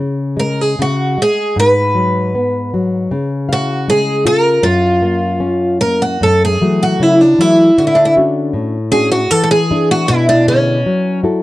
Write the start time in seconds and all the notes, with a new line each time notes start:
Already playing: C#3
0.37 G#3 A#4
0.61 G#4
0.79 C#3 F#4
1.18 G#3
1.22 G#4
1.56 G#2 B4
1.95 F#3
2.35 B3
2.74 F#3
3.11 C#3
3.49 F#4 F5
3.88 G#3 G#4
4.25 F4 A#4
4.63 F#2 F4
5.02 A#3
5.40 C#4
5.81 A#3 A#4
6.02 F#4
6.21 F#2 A4
6.45 G#4
6.61 E3 F#3 A3
6.83 F#4
7.00 C#3 E4
7.21 D4
7.38 E3 F#3 A3 E4
7.78 D3 F#4
7.87 E4
7.95 D4
8.05 E4
8.17 C#4 D4 F#4
8.53 A2
8.92 C#4 D4 F#4 G#4
9.12 F#4
9.31 E3 A4
9.43 A4
9.51 G#4
9.71 D4 E4 G#4
9.91 F#4
10.08 B2 E4
10.29 D4
10.47 D3 C#4 E4 G#4
10.86 F#3
11.23 E4 F#4 A4